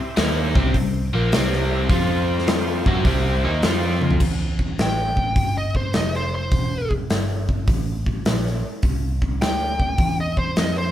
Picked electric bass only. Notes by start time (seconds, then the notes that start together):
0.18 D#2
0.55 C2
0.75 C2
1.14 A#1
1.34 C2
1.90 F2
2.86 F#2
3.05 C2
3.45 D#2
3.64 F2
4.21 E2
4.80 A1
5.36 G1
5.95 F1
6.52 E1
7.11 G1
7.68 A1
8.27 A#1
8.65 muted picked electric bass stroke
8.84 C2
9.43 D2
9.99 E2
10.58 F2